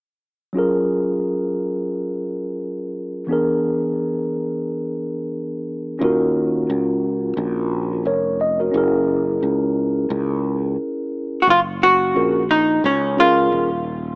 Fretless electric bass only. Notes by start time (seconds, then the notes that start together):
6.01 D#2
6.70 C#2
7.37 A#1
8.05 F1
8.74 F#1
9.43 C#2
10.10 C#2
11.47 F#1
12.16 A#1
12.84 C#2
13.52 D#1